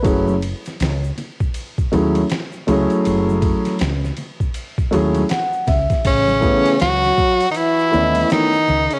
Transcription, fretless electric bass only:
X:1
M:4/4
L:1/16
Q:"Swing 16ths" 1/4=80
K:F#dor
V:1 name="Fretless electric bass" clef=bass
F,,,3 z C,,2 z4 D,,2 z2 C,, z | F,,,3 z C,,2 z4 D,,2 z2 C,, z | A,,,3 z C,,2 z4 D,,2 z2 C,, z |]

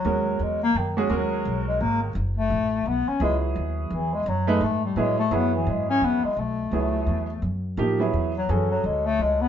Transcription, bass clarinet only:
X:1
M:3/4
L:1/8
Q:"Swing" 1/4=171
K:F#mix
V:1 name="Bass clarinet" clef=bass
F,2 G, A, D, z | F,3 G, A, D, | z =A,3 B, C | G, z3 E, G, |
F, G, =A, =G, ^G, A, | B, E, G, C B, G, | [K:Bdor] A,6 | z4 z F, |
E, F, G, A, G, B, |]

